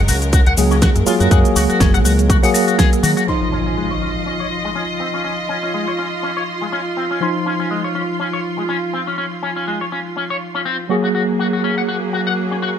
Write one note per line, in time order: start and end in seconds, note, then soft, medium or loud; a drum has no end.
0.00 3.24 F#3 medium
0.00 3.24 G#3 medium
0.00 3.24 A#4 medium
0.08 0.41 C#2 medium
0.08 0.15 F#4 medium
0.08 open hi-hat loud
0.08 shaker medium
0.22 closed hi-hat soft
0.22 shaker soft
0.33 0.40 F#4 medium
0.33 kick loud
0.33 closed hi-hat medium
0.33 shaker soft
0.47 0.55 C#2 medium
0.47 0.52 F#5 loud
0.47 closed hi-hat soft
0.57 0.90 C#2 medium
0.57 1.04 F#3 medium
0.57 1.04 A#3 medium
0.57 1.05 G#4 medium
0.57 open hi-hat loud
0.57 shaker medium
0.71 0.75 C#4 medium
0.71 shaker soft
0.82 0.89 F#4 medium
0.82 kick loud
0.82 snare loud
0.82 closed hi-hat medium
0.82 shaker soft
0.96 1.04 F#2 medium
0.96 cross-stick medium
0.96 closed hi-hat medium
0.96 shaker soft
1.06 1.29 F#3 medium
1.06 1.29 A#3 medium
1.06 1.14 F4 medium
1.06 1.29 F4 medium
1.06 1.29 G#4 medium
1.06 muted fingered electric bass stroke soft
1.06 open hi-hat medium
1.06 shaker medium
1.20 1.28 F#2 medium
1.20 1.29 F#4 medium
1.20 closed hi-hat soft
1.20 shaker soft
1.30 1.41 F#2 medium
1.30 2.40 F#3 medium
1.30 2.40 A#3 medium
1.30 1.38 F#4 medium
1.30 2.41 G#4 medium
1.30 kick loud
1.30 closed hi-hat medium
1.30 shaker soft
1.45 closed hi-hat soft
1.45 shaker soft
1.56 1.66 C#2 medium
1.56 1.63 F#4 loud
1.56 open hi-hat loud
1.56 shaker medium
1.69 1.78 F#4 medium
1.69 closed hi-hat soft
1.69 shaker soft
1.80 2.05 F#1 loud
1.80 1.91 C#4 medium
1.80 kick loud
1.80 snare loud
1.80 closed hi-hat medium
1.80 shaker soft
1.94 1.97 F#5 medium
1.94 cross-stick medium
1.94 closed hi-hat soft
1.94 shaker soft
2.05 2.37 C#2 medium
2.05 2.12 F#4 medium
2.05 open hi-hat medium
2.05 shaker medium
2.19 closed hi-hat medium
2.19 shaker soft
2.30 2.37 F#4 medium
2.30 kick loud
2.30 closed hi-hat medium
2.30 shaker soft
2.43 3.25 F#3 medium
2.43 3.25 A#3 medium
2.43 3.26 G#4 loud
2.43 2.49 F#5 loud
2.43 open hi-hat medium
2.43 shaker soft
2.54 2.65 F#4 medium
2.54 open hi-hat loud
2.54 shaker medium
2.68 2.76 F#4 medium
2.68 closed hi-hat soft
2.68 shaker soft
2.78 2.89 G#4 loud
2.78 kick loud
2.78 snare loud
2.78 closed hi-hat medium
2.78 shaker soft
2.93 cross-stick medium
2.93 closed hi-hat medium
2.93 shaker soft
3.03 3.13 D#3 medium
3.03 3.10 F#4 medium
3.03 open hi-hat medium
3.03 shaker medium
3.17 3.23 F#4 loud
3.17 closed hi-hat soft
3.17 shaker soft
3.27 7.18 F3 medium
3.27 3.35 C#4 medium
3.27 7.19 D#4 medium
3.27 10.86 F4 medium
3.27 7.18 D#5 medium
3.27 10.86 C6 medium
3.27 7.19 C6 medium
3.27 impact medium
3.52 3.59 C#4 medium
3.66 3.74 C#4 medium
3.77 3.88 G#3 medium
3.91 3.94 C#5 medium
4.02 4.09 C#4 medium
4.26 4.33 C#4 medium
4.40 4.46 C#5 medium
4.65 4.68 G#3 medium
4.75 4.82 C#4 medium
5.00 5.07 C4 medium
5.14 5.22 C#4 medium
5.24 5.32 C#4 medium
5.49 5.56 C#4 medium
5.63 5.71 C#4 medium
5.74 5.84 G#3 medium
5.88 5.91 C#5 medium
5.99 6.05 C#4 medium
6.23 6.30 C#4 medium
6.37 6.42 C#5 medium
6.62 6.65 G#3 medium
6.72 6.79 C#4 medium
6.97 7.04 C4 medium
7.11 7.19 C#4 medium
7.21 10.87 F3 medium
7.21 7.28 C#4 medium
7.21 10.88 D#4 medium
7.21 10.88 C6 medium
7.46 7.53 C#4 medium
7.60 7.68 C#4 medium
7.71 7.81 G#3 medium
7.84 7.88 C#5 medium
7.95 8.02 C#4 medium
8.20 8.27 C#4 medium
8.33 8.39 C#5 medium
8.58 8.61 G#3 medium
8.69 8.76 C#4 medium
8.93 9.00 C4 medium
9.07 9.15 C#4 medium
9.18 9.25 C#4 medium
9.43 9.50 C#4 medium
9.56 9.65 C#4 medium
9.67 9.78 G#3 medium
9.81 9.84 C#5 medium
9.92 9.99 C#4 medium
10.16 10.23 C#4 medium
10.30 10.36 C#5 medium
10.55 10.60 C#4 medium
10.65 10.76 C4 medium
10.89 12.79 F#3 medium
10.89 12.79 A#3 medium
10.89 10.94 F#4 medium
10.89 12.79 G#4 medium
11.04 11.07 F#4 medium
11.15 11.22 F#4 medium
11.39 11.46 F#4 medium
11.53 11.61 F#4 medium
11.64 11.74 C#4 medium
11.78 11.81 F#5 medium
11.88 11.95 F#4 medium
12.13 12.20 F#4 medium
12.27 12.32 F#5 medium
12.51 12.55 C#4 medium
12.62 12.69 F#4 medium